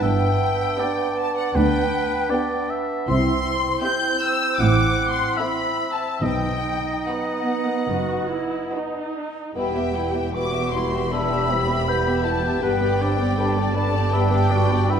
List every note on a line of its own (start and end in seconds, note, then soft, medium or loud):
0.00 0.64 G1 medium
0.00 0.64 G2 medium
0.00 3.10 B3 medium
0.00 0.30 B3 medium
0.00 0.30 D4 medium
0.00 3.08 D4 medium
0.00 0.81 E5 medium
0.00 1.17 G5 medium
0.78 1.36 B3 medium
0.78 1.35 D4 medium
0.78 1.35 G4 medium
0.78 1.35 B4 medium
0.78 1.57 D5 medium
1.17 1.36 A5 medium
1.35 1.54 F#5 medium
1.35 1.55 F#5 medium
1.54 2.16 D2 medium
1.54 1.82 B3 medium
1.54 1.82 D4 medium
1.54 2.31 B4 medium
1.54 2.69 G5 medium
1.54 2.68 G5 medium
2.30 2.88 B3 medium
2.30 2.88 D4 medium
2.30 2.89 G4 medium
2.30 2.88 B4 medium
2.30 2.71 D5 medium
2.70 3.57 E5 medium
3.08 3.68 C2 medium
3.08 3.68 C3 medium
3.08 3.35 C4 medium
3.08 6.77 C4 medium
3.08 3.35 E4 medium
3.08 5.87 E4 medium
3.08 3.79 C6 medium
3.08 3.80 C6 loud
3.83 4.41 C4 medium
3.83 4.41 E4 medium
3.83 4.41 G4 medium
3.83 4.40 E5 medium
3.83 4.61 G5 medium
3.83 4.22 G6 medium
3.83 4.22 G6 loud
4.21 4.60 E6 loud
4.21 4.61 E6 medium
4.58 5.21 A1 medium
4.58 5.22 A2 medium
4.58 4.87 C4 medium
4.58 4.87 E4 medium
4.58 5.39 F#5 medium
4.58 5.11 D6 loud
4.58 5.12 D6 medium
5.11 5.37 C6 medium
5.11 5.38 C6 medium
5.37 6.01 C4 medium
5.37 6.00 E4 medium
5.37 6.00 A4 medium
5.37 6.24 E5 medium
5.37 6.00 E5 medium
5.37 5.91 B5 medium
5.37 5.93 B5 medium
5.92 6.21 A5 medium
5.92 6.22 A5 medium
6.21 6.90 B1 medium
6.21 7.44 B2 medium
6.21 6.90 B2 medium
6.21 6.54 B3 medium
6.21 9.18 D#4 medium
6.21 6.54 D#4 medium
6.21 9.15 D#5 medium
6.21 7.05 G5 medium
6.21 7.06 G5 medium
7.06 9.18 B3 medium
7.06 7.87 B3 medium
7.06 7.71 F#4 medium
7.06 7.71 B4 soft
7.06 8.73 F#5 medium
7.89 8.55 F#1 medium
7.89 8.56 F#2 medium
7.89 8.20 B3 medium
7.89 8.21 D#4 medium
7.89 8.31 F#4 medium
8.31 8.72 E4 medium
8.73 9.56 D#4 medium
8.73 9.35 F#4 soft
8.73 9.35 B4 medium
9.55 12.58 E1 medium
9.55 12.58 E2 soft
9.55 9.74 G3 soft
9.55 10.30 B3 medium
9.55 9.85 B3 medium
9.55 9.74 E4 soft
9.55 9.98 G4 medium
9.55 9.84 G4 soft
9.55 9.74 B4 soft
9.55 10.31 G5 medium
9.75 9.95 B3 soft
9.75 9.95 G4 soft
9.75 9.95 E5 soft
9.94 10.14 G3 soft
9.94 10.15 E4 soft
9.94 10.37 E4 soft
9.94 10.14 B4 soft
10.13 10.34 B3 soft
10.13 10.33 G4 soft
10.13 10.33 E5 soft
10.33 10.52 G3 soft
10.33 11.14 B3 medium
10.33 10.51 E4 soft
10.33 10.52 E4 soft
10.33 11.14 F#4 soft
10.33 10.52 B4 soft
10.33 10.73 D6 medium
10.33 10.74 D6 medium
10.51 10.73 B3 soft
10.51 10.72 G4 soft
10.51 10.73 G4 soft
10.51 10.72 E5 soft
10.71 10.92 G3 soft
10.71 10.92 E4 soft
10.71 10.91 B4 soft
10.71 11.11 C6 medium
10.90 11.12 B3 soft
10.90 11.11 G4 soft
10.90 11.12 G4 soft
10.90 11.10 E5 soft
11.10 11.30 G3 soft
11.10 11.40 B3 medium
11.10 11.52 D4 medium
11.10 11.29 E4 soft
11.10 11.30 E4 soft
11.10 12.61 G4 soft
11.10 11.40 G4 medium
11.10 11.28 B4 soft
11.10 11.90 E5 medium
11.10 12.25 B5 medium
11.10 12.26 B5 medium
11.30 11.50 B3 soft
11.30 11.49 G4 soft
11.30 11.50 G4 soft
11.30 11.50 E5 soft
11.49 11.70 G3 soft
11.49 11.90 C4 medium
11.49 11.69 E4 soft
11.49 11.69 B4 soft
11.68 11.88 B3 soft
11.68 11.87 G4 soft
11.68 11.88 G4 soft
11.68 11.88 E5 soft
11.89 12.06 G3 soft
11.89 12.62 B3 medium
11.89 12.06 E4 soft
11.89 12.06 B4 soft
11.89 12.62 G5 medium
12.06 12.25 B3 soft
12.06 12.25 G4 soft
12.06 12.26 G4 soft
12.06 12.26 E5 soft
12.24 12.44 G3 soft
12.24 12.43 E4 soft
12.24 12.44 E4 soft
12.24 12.44 B4 soft
12.24 12.63 A5 medium
12.43 12.62 B3 soft
12.43 12.62 G4 soft
12.43 12.63 G4 soft
12.43 12.63 E5 soft
12.61 15.00 G1 medium
12.61 15.00 G2 medium
12.61 12.79 G3 medium
12.61 12.89 B3 medium
12.61 13.03 B3 medium
12.61 12.79 D4 medium
12.61 13.39 G4 medium
12.61 12.89 G4 medium
12.61 12.80 B4 soft
12.61 13.03 B4 medium
12.61 13.75 G5 medium
12.80 12.99 B3 soft
12.80 13.01 G4 soft
12.80 13.00 D5 soft
12.99 13.19 G3 soft
12.99 13.40 C4 medium
12.99 13.18 D4 medium
12.99 13.20 B4 soft
12.99 14.14 D5 medium
13.18 13.37 B3 soft
13.18 13.38 G4 soft
13.18 13.38 D5 soft
13.37 13.54 G3 soft
13.37 13.55 D4 medium
13.37 13.76 D4 medium
13.37 14.16 A4 medium
13.37 13.56 B4 soft
13.57 13.75 B3 soft
13.57 13.75 G4 soft
13.57 13.76 D5 soft
13.75 13.94 G3 medium
13.75 13.94 D4 medium
13.75 14.88 D4 medium
13.75 13.94 B4 medium
13.75 14.12 A5 medium
13.75 14.13 A5 medium
13.93 14.12 B3 soft
13.93 14.13 G4 soft
13.93 14.12 D5 medium
14.12 14.30 G3 medium
14.12 14.41 B3 medium
14.12 14.30 D4 medium
14.12 14.52 G4 medium
14.12 14.41 G4 medium
14.12 14.31 B4 medium
14.12 14.53 E5 medium
14.12 15.00 G5 medium
14.31 14.50 B3 medium
14.31 14.51 G4 medium
14.31 14.51 D5 soft
14.50 14.70 G3 medium
14.50 14.70 D4 medium
14.50 14.70 B4 medium
14.50 14.91 D5 medium
14.54 14.94 F#4 medium
14.69 14.90 B3 soft
14.69 14.89 G4 medium
14.69 14.89 D5 soft
14.89 15.00 G3 medium
14.89 15.00 B3 medium
14.89 15.00 D4 medium
14.89 15.00 E4 medium
14.89 15.00 B4 medium
14.89 15.00 E5 medium